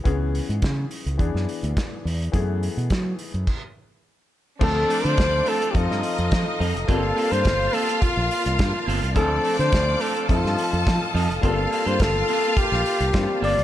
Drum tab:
CC |----------------|--------x-------|x---------------|----------------|
HH |x-oxx-oxx-oxx-ox|x-oxx-ox--------|--oxx-oxx-oxx-ox|x-oxx-oxx-oxx-ox|
SD |----o----o--o---|----o-----------|----o----o--o---|----o-------o---|
BD |o---o---o---o---|o---o---o-------|o---o---o---o---|o---o---o---o---|

CC |----------------|----------------|
HH |x-oxx-oxx-oxx-ox|x-oxx-oxx-oxx-ox|
SD |----o----o--o---|----o----o--o---|
BD |o---o---o---o---|o---o---o---o---|